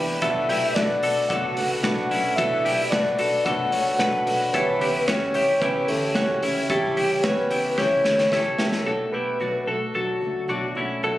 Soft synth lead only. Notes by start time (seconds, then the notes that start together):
0.22 E5
0.74 D5
1.02 D5
1.29 F#5
1.82 F#5
2.35 E5
2.90 D5
3.17 D5
3.45 F#5
3.99 F#5
4.53 B4
5.07 C#5
5.61 B4
5.88 A4
6.70 G4
7.25 B4
7.79 C#5
8.86 A4
9.12 B4
9.67 A4
9.96 F#4
11.04 A4